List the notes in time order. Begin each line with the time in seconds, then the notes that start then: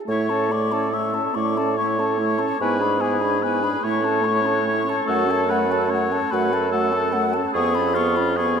0.06 A2 A3 E4 C#5 C#6
0.30 C#4 A4 A5
0.49 A3 E4 D5 C#6
0.72 C#4 A4 A5
0.92 A3 E4 E5 C#6
1.14 C#4 A4 A5
1.35 A2 A3 E4 D5 C#6
1.57 C#4 A4 A5
1.77 A3 E4 C#5 C#6
1.99 C#4 A4 A5
2.17 A3 E4 C#6
2.39 C#4 A4 A5
2.60 G#2 B3 E4 B4 G#5
2.79 D4 G#4 B5
2.99 B3 E4 G#4 G#5
3.20 D4 G#4 B5
3.42 B3 E4 B4 G#5
3.62 D4 G#4 B5
3.81 A2 A3 C#5 C#6
3.86 E4
4.02 C#4 A5
4.06 A4
4.22 A3 C#6
4.27 E4
4.42 C#4
4.46 A4 A5
4.63 A3
4.67 E4 C#6
4.84 C#4 A4
4.89 A5
5.05 F#2 A3 F#4 A4
5.09 F#5
5.25 C#4
5.30 A4 A5
5.47 A3 B4
5.51 F#4 F#5
5.68 C#4 A4
5.72 A5
5.89 A3 F#4 C#5 F#5
6.11 C#4 A4 A5
6.31 F#2 A3 F#4 B4 F#5
6.51 C#4 A4 A5
6.71 A3 F#4 A4 F#5
6.92 C#4 A4 A5
7.13 A3 F#4 F#5
7.32 C#4 A4 A5
7.53 F2 B3 G#4 C#6
7.75 C#4 F4 B5
7.94 B3 F4 G#4 C#6
8.16 C#4 F4 B5
8.37 B3 G#4 C#6